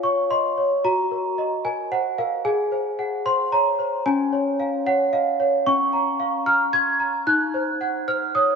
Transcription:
0, 0, Header, 1, 2, 480
1, 0, Start_track
1, 0, Key_signature, -5, "major"
1, 0, Tempo, 536193
1, 756, Time_signature, 3, 2, 24, 8
1, 7658, End_track
2, 0, Start_track
2, 0, Title_t, "Celesta"
2, 0, Program_c, 0, 8
2, 0, Control_c, 0, 64, 127
2, 0, Note_on_c, 0, 65, 53
2, 0, Note_on_c, 0, 73, 45
2, 0, Note_on_c, 0, 77, 46
2, 0, Note_on_c, 0, 80, 75
2, 31, Note_off_c, 0, 73, 0
2, 31, Note_on_c, 0, 73, 40
2, 31, Note_on_c, 0, 85, 73
2, 179, Note_off_c, 0, 77, 0
2, 272, Note_on_c, 0, 75, 37
2, 274, Note_off_c, 0, 85, 0
2, 274, Note_on_c, 0, 84, 79
2, 418, Note_off_c, 0, 73, 0
2, 514, Note_off_c, 0, 75, 0
2, 515, Note_on_c, 0, 73, 42
2, 720, Note_off_c, 0, 65, 0
2, 757, Note_off_c, 0, 73, 0
2, 757, Note_off_c, 0, 84, 0
2, 757, Note_on_c, 0, 66, 56
2, 757, Note_on_c, 0, 82, 82
2, 772, Control_c, 0, 64, 0
2, 775, Note_off_c, 0, 80, 0
2, 902, Control_c, 0, 64, 127
2, 997, Note_on_c, 0, 70, 44
2, 1237, Note_on_c, 0, 75, 47
2, 1382, Note_off_c, 0, 70, 0
2, 1474, Note_on_c, 0, 70, 43
2, 1475, Note_on_c, 0, 80, 75
2, 1479, Note_off_c, 0, 82, 0
2, 1621, Note_off_c, 0, 75, 0
2, 1716, Note_off_c, 0, 80, 0
2, 1716, Note_on_c, 0, 72, 42
2, 1717, Note_on_c, 0, 78, 76
2, 1859, Note_off_c, 0, 70, 0
2, 1955, Note_on_c, 0, 70, 48
2, 1955, Note_on_c, 0, 77, 76
2, 1956, Note_off_c, 0, 72, 0
2, 1957, Note_off_c, 0, 78, 0
2, 2161, Note_off_c, 0, 66, 0
2, 2192, Note_on_c, 0, 68, 58
2, 2192, Note_on_c, 0, 80, 83
2, 2196, Note_off_c, 0, 70, 0
2, 2196, Note_off_c, 0, 77, 0
2, 2216, Control_c, 0, 64, 0
2, 2345, Control_c, 0, 64, 127
2, 2434, Note_on_c, 0, 72, 47
2, 2675, Note_on_c, 0, 78, 48
2, 2819, Note_off_c, 0, 72, 0
2, 2914, Note_off_c, 0, 80, 0
2, 2916, Note_on_c, 0, 84, 85
2, 2917, Note_on_c, 0, 72, 49
2, 3059, Note_off_c, 0, 78, 0
2, 3154, Note_on_c, 0, 73, 45
2, 3155, Note_on_c, 0, 82, 86
2, 3156, Note_off_c, 0, 84, 0
2, 3300, Note_off_c, 0, 72, 0
2, 3390, Note_on_c, 0, 72, 45
2, 3394, Note_off_c, 0, 73, 0
2, 3597, Note_off_c, 0, 68, 0
2, 3633, Note_off_c, 0, 72, 0
2, 3633, Note_on_c, 0, 61, 62
2, 3633, Note_on_c, 0, 80, 92
2, 3635, Note_off_c, 0, 82, 0
2, 3653, Control_c, 0, 64, 0
2, 3810, Control_c, 0, 64, 127
2, 3873, Note_on_c, 0, 73, 50
2, 4114, Note_on_c, 0, 77, 48
2, 4259, Note_off_c, 0, 73, 0
2, 4353, Note_on_c, 0, 73, 53
2, 4354, Note_off_c, 0, 80, 0
2, 4356, Note_on_c, 0, 78, 83
2, 4498, Note_off_c, 0, 77, 0
2, 4591, Note_on_c, 0, 75, 45
2, 4591, Note_on_c, 0, 77, 77
2, 4595, Note_off_c, 0, 78, 0
2, 4737, Note_off_c, 0, 73, 0
2, 4831, Note_off_c, 0, 75, 0
2, 4831, Note_off_c, 0, 77, 0
2, 4832, Note_on_c, 0, 73, 54
2, 5035, Note_off_c, 0, 61, 0
2, 5071, Note_on_c, 0, 85, 96
2, 5072, Note_off_c, 0, 73, 0
2, 5072, Note_on_c, 0, 61, 65
2, 5088, Control_c, 0, 64, 0
2, 5249, Control_c, 0, 64, 127
2, 5308, Note_on_c, 0, 82, 58
2, 5547, Note_on_c, 0, 77, 57
2, 5691, Note_off_c, 0, 82, 0
2, 5786, Note_on_c, 0, 82, 55
2, 5786, Note_on_c, 0, 89, 91
2, 5788, Note_off_c, 0, 85, 0
2, 5931, Note_off_c, 0, 77, 0
2, 6026, Note_on_c, 0, 84, 47
2, 6026, Note_on_c, 0, 92, 107
2, 6027, Note_off_c, 0, 89, 0
2, 6172, Note_off_c, 0, 82, 0
2, 6265, Note_on_c, 0, 82, 54
2, 6268, Note_off_c, 0, 84, 0
2, 6474, Note_off_c, 0, 61, 0
2, 6507, Note_on_c, 0, 90, 83
2, 6508, Note_off_c, 0, 82, 0
2, 6508, Note_on_c, 0, 63, 66
2, 6509, Note_off_c, 0, 92, 0
2, 6526, Control_c, 0, 64, 0
2, 6654, Control_c, 0, 64, 127
2, 6751, Note_on_c, 0, 72, 55
2, 6990, Note_on_c, 0, 78, 53
2, 7136, Note_off_c, 0, 72, 0
2, 7231, Note_off_c, 0, 90, 0
2, 7232, Note_on_c, 0, 72, 52
2, 7233, Note_on_c, 0, 89, 87
2, 7376, Note_off_c, 0, 78, 0
2, 7473, Note_off_c, 0, 89, 0
2, 7474, Note_on_c, 0, 87, 87
2, 7475, Note_on_c, 0, 73, 46
2, 7618, Note_off_c, 0, 72, 0
2, 7658, Note_off_c, 0, 63, 0
2, 7658, Note_off_c, 0, 73, 0
2, 7658, Note_off_c, 0, 87, 0
2, 7658, End_track
0, 0, End_of_file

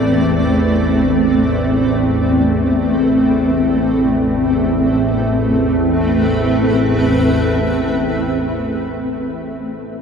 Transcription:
0, 0, Header, 1, 3, 480
1, 0, Start_track
1, 0, Key_signature, 0, "minor"
1, 0, Tempo, 500000
1, 9616, End_track
2, 0, Start_track
2, 0, Title_t, "Ambient pad"
2, 0, Program_c, 0, 92
2, 0, Note_on_c, 0, 57, 84
2, 0, Note_on_c, 0, 60, 73
2, 0, Note_on_c, 0, 71, 75
2, 0, Note_on_c, 0, 74, 92
2, 4608, Note_off_c, 0, 57, 0
2, 4617, Note_off_c, 0, 71, 0
2, 4620, Note_on_c, 0, 57, 75
2, 4624, Note_off_c, 0, 60, 0
2, 4627, Note_off_c, 0, 74, 0
2, 4756, Note_on_c, 0, 60, 71
2, 4879, Note_on_c, 0, 71, 69
2, 5014, Note_on_c, 0, 76, 62
2, 8810, Note_off_c, 0, 71, 0
2, 8811, Note_off_c, 0, 57, 0
2, 8813, Note_off_c, 0, 76, 0
2, 8814, Note_off_c, 0, 60, 0
2, 9616, End_track
3, 0, Start_track
3, 0, Title_t, "Synth drone"
3, 0, Program_c, 1, 95
3, 0, Note_on_c, 1, 33, 79
3, 0, Note_on_c, 1, 40, 83
3, 4605, Note_off_c, 1, 33, 0
3, 4605, Note_off_c, 1, 40, 0
3, 4617, Note_on_c, 1, 33, 77
3, 4617, Note_on_c, 1, 40, 76
3, 8897, Note_off_c, 1, 33, 0
3, 8897, Note_off_c, 1, 40, 0
3, 9616, End_track
0, 0, End_of_file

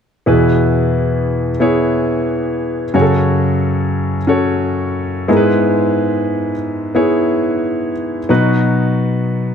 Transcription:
0, 0, Header, 1, 2, 480
1, 0, Start_track
1, 0, Key_signature, 4, "major"
1, 0, Tempo, 668896
1, 193, Time_signature, 4, 2, 24, 8
1, 6850, End_track
2, 0, Start_track
2, 0, Title_t, "Grand piano"
2, 0, Program_c, 0, 0
2, 189, Note_on_c, 0, 59, 54
2, 192, Note_on_c, 0, 47, 55
2, 192, Note_on_c, 0, 64, 54
2, 195, Note_on_c, 0, 40, 53
2, 195, Note_on_c, 0, 68, 53
2, 200, Note_on_c, 0, 71, 67
2, 331, Control_c, 0, 64, 127
2, 1070, Note_off_c, 0, 59, 0
2, 1071, Note_off_c, 0, 64, 0
2, 1073, Note_off_c, 0, 68, 0
2, 1075, Note_off_c, 0, 71, 0
2, 1149, Note_on_c, 0, 59, 57
2, 1152, Note_on_c, 0, 64, 55
2, 1157, Note_on_c, 0, 68, 53
2, 1160, Note_on_c, 0, 73, 67
2, 2030, Note_off_c, 0, 59, 0
2, 2031, Note_off_c, 0, 64, 0
2, 2034, Note_off_c, 0, 68, 0
2, 2035, Note_off_c, 0, 73, 0
2, 2083, Note_off_c, 0, 47, 0
2, 2084, Note_off_c, 0, 40, 0
2, 2108, Note_on_c, 0, 61, 60
2, 2110, Note_on_c, 0, 66, 58
2, 2112, Note_on_c, 0, 42, 55
2, 2115, Note_on_c, 0, 49, 54
2, 2117, Note_on_c, 0, 68, 45
2, 2119, Note_on_c, 0, 73, 66
2, 2121, Control_c, 0, 64, 0
2, 2161, Note_off_c, 0, 68, 0
2, 2161, Note_on_c, 0, 69, 54
2, 2230, Control_c, 0, 64, 127
2, 2989, Note_off_c, 0, 61, 0
2, 2990, Note_off_c, 0, 66, 0
2, 2995, Note_off_c, 0, 73, 0
2, 3016, Note_off_c, 0, 69, 0
2, 3066, Note_on_c, 0, 61, 60
2, 3071, Note_on_c, 0, 66, 55
2, 3076, Note_on_c, 0, 69, 53
2, 3079, Note_on_c, 0, 73, 68
2, 3763, Note_off_c, 0, 42, 0
2, 3765, Note_off_c, 0, 49, 0
2, 3789, Note_off_c, 0, 61, 0
2, 3791, Note_off_c, 0, 66, 0
2, 3792, Note_on_c, 0, 59, 65
2, 3794, Note_off_c, 0, 69, 0
2, 3795, Note_off_c, 0, 73, 0
2, 3795, Note_on_c, 0, 56, 58
2, 3795, Note_on_c, 0, 64, 60
2, 3797, Note_on_c, 0, 44, 56
2, 3799, Note_on_c, 0, 68, 63
2, 3801, Control_c, 0, 64, 0
2, 3802, Note_on_c, 0, 70, 54
2, 3844, Note_off_c, 0, 70, 0
2, 3850, Note_on_c, 0, 71, 71
2, 3931, Control_c, 0, 64, 127
2, 4672, Note_off_c, 0, 59, 0
2, 4674, Note_off_c, 0, 64, 0
2, 4675, Note_off_c, 0, 68, 0
2, 4701, Note_off_c, 0, 71, 0
2, 4985, Note_on_c, 0, 59, 60
2, 4990, Note_on_c, 0, 64, 61
2, 4994, Note_on_c, 0, 68, 57
2, 4996, Note_on_c, 0, 73, 64
2, 5685, Note_off_c, 0, 56, 0
2, 5686, Note_off_c, 0, 44, 0
2, 5869, Note_off_c, 0, 59, 0
2, 5871, Note_off_c, 0, 64, 0
2, 5873, Note_off_c, 0, 68, 0
2, 5874, Note_off_c, 0, 73, 0
2, 5950, Note_on_c, 0, 59, 62
2, 5953, Note_on_c, 0, 63, 57
2, 5955, Note_on_c, 0, 47, 59
2, 5957, Note_on_c, 0, 54, 53
2, 5957, Note_on_c, 0, 66, 57
2, 5961, Control_c, 0, 64, 0
2, 5961, Note_on_c, 0, 71, 70
2, 6103, Control_c, 0, 64, 127
2, 6831, Note_off_c, 0, 59, 0
2, 6833, Note_off_c, 0, 63, 0
2, 6835, Note_off_c, 0, 66, 0
2, 6837, Note_off_c, 0, 71, 0
2, 6850, Note_off_c, 0, 47, 0
2, 6850, Note_off_c, 0, 54, 0
2, 6850, End_track
0, 0, End_of_file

